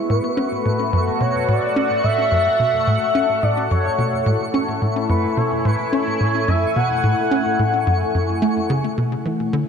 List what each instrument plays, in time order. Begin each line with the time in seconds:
Already playing: analog synth pad B3 B4 E5, synth texture C#6
0.09 analog synth bass A2, analog synth pad A3, analog synth lead B4
0.21 analog synth pad F#4
0.37 analog synth bass C#4
0.44 analog synth pad A4
0.65 analog synth bass A2
0.82 analog synth pad F#5
0.93 analog synth bass F#2
1.20 analog synth bass B2, analog synth lead C#5
1.48 analog synth bass A2, analog synth lead D5
1.76 analog synth bass C#4
2.03 analog synth bass A2, analog synth lead E5
2.31 analog synth bass F#2
2.59 analog synth bass B2
2.87 analog synth bass A2
3.15 analog synth bass C#4
3.43 analog synth bass A2, analog synth lead D5
3.70 analog synth bass F#2, analog synth lead C#5
3.98 analog synth bass B2
4.18 analog synth pad E4
4.26 analog synth bass A2
4.54 analog synth bass C#4
4.82 analog synth bass A2
5.01 analog synth pad G#5
5.09 analog synth bass F#2, analog synth lead B4
5.37 analog synth bass B2, analog synth lead C#5
5.65 analog synth bass A2, analog synth lead B4
5.93 analog synth bass C#4, analog synth lead C#5
6.20 analog synth bass A2
6.48 analog synth bass F#2, analog synth lead E5
6.76 analog synth bass B2, analog synth lead F#5
7.03 analog synth bass A2
7.31 analog synth bass C#4
7.59 analog synth bass A2
7.87 analog synth bass F#2
8.14 analog synth bass F#2
8.42 analog synth bass A3
8.70 analog synth bass C#3
8.98 analog synth bass B2, synth texture C#5
9.25 analog synth bass E3
9.46 analog synth pad D4
9.50 analog synth bass D3, analog synth pad B4
9.65 analog synth pad F#5